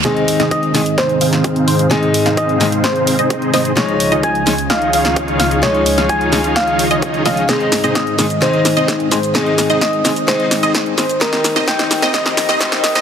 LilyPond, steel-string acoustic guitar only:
\new Staff \with { instrumentName = "Steel-string acoustic guitar" } { \time 4/4 \key aes \major \tempo 4 = 129 <ees aes c' ees'>4. <ees aes c' ees'>8 r2 | <ees aes c' ees'>4. <ees aes c' ees'>8 r2 | <f aes des' ees'>4. <f aes des' ees'>8 r2 | <f aes des' ees'>4. <f aes des' ees'>8 r4. <f aes des' ees'>8 |
<ees aes c' ees'>4. <ees aes c' ees'>8 <ees aes c' ees'>4. <ees aes c' ees'>8 | <ees aes c' ees'>4. <ees aes c' ees'>8 <ees aes c' ees'>4. <ees aes c' ees'>8 | <ees g c' ees'>4 <ees g c' ees'>4 <ees g c' ees'>4 <ees g c' ees'>4 | }